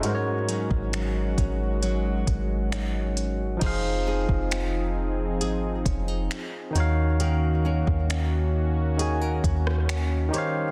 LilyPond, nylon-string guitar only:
\new Staff \with { instrumentName = "Nylon-string guitar" } { \time 4/4 \key ees \dorian \tempo 4 = 67 aes,8 <ges des' ees'>8 ges8 des'8 ges4 <ges des' ees'>4 | <f aes'>8 <c' ees' aes'>8 c'4 aes'8 des'16 ees'8. ees8 | <ees bes'>8 <des' ges' bes'>8 des'4 aes'16 bes'16 ges'4 ees8 | }